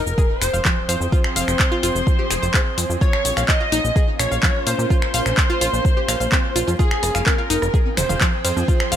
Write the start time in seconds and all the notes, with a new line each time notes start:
Already playing: F3 C4 G#4 A#4 G5, sub drop
0.06 F1, shaker
0.18 G#4, kick, shaker
0.41 F1 C5, finger snap, open hi-hat, shaker
0.53 F1 F5, shaker
0.65 F3, kick, clap, shaker
0.89 F2 C5 F5, open hi-hat, shaker
1.00 F2, shaker
1.12 F4, kick, shaker
1.24 finger snap
1.36 F1 F5, open hi-hat, shaker
1.48 F1, finger snap, shaker
1.59 kick, clap, shaker
1.72 F4
1.83 F1 F4, open hi-hat, shaker
1.95 F1, shaker
2.07 kick, shaker
2.19 G4
2.30 F1 G#4, finger snap, open hi-hat, shaker
2.42 F1 C5, shaker
2.54 G#4, kick, clap, shaker
2.77 F2, open hi-hat, shaker
2.90 F2, shaker
3.01 A#3 C#4 F4 C#5, kick, shaker
3.13 finger snap
3.25 A#1, open hi-hat, shaker
3.37 A#1 F5, finger snap, shaker
3.49 D#5, kick, clap, shaker
3.60 F4
3.72 A#1 D#4, open hi-hat, shaker
3.84 A#1, shaker
3.96 G#4, kick, shaker
4.19 A#1 C#5, finger snap, open hi-hat, shaker
4.31 A#1 F5, shaker
4.43 F3, kick, clap, shaker
4.67 A#2 C5 F5, open hi-hat, shaker
4.79 A#2, shaker
4.90 F4, kick, shaker
5.02 finger snap
5.14 A#1 F5, open hi-hat, shaker
5.26 A#1, finger snap, shaker
5.37 kick, clap, shaker
5.50 F4
5.61 A#1 F4, open hi-hat, shaker
5.73 A#1, shaker
5.85 kick, shaker
5.97 G4
6.08 A#1 F5, finger snap, open hi-hat, shaker
6.20 A#1 F5, shaker
6.32 C4, kick, clap, shaker
6.56 A#1 F4, open hi-hat, shaker
6.67 F2 F4, shaker
6.79 F3 C4 F4 G#4 G5, kick, shaker
6.91 finger snap
7.03 F1, cross-stick, open hi-hat, shaker
7.15 F1 F5, finger snap, shaker
7.26 A#4, kick, clap, high conga, shaker
7.38 F4
7.50 F1 D#4, open hi-hat, shaker
7.62 F1, cross-stick, shaker
7.74 G#4, kick, shaker
7.86 high conga
7.97 F1 C5, finger snap, mid tom, open hi-hat, shaker
8.09 F1 F5, mid tom, shaker
8.21 F3, kick, clap, shaker
8.45 F2 C5 F5, open hi-hat, shaker
8.56 F2, high conga, shaker
8.68 F4, kick, shaker
8.80 finger snap
8.92 F1 F5, open hi-hat, shaker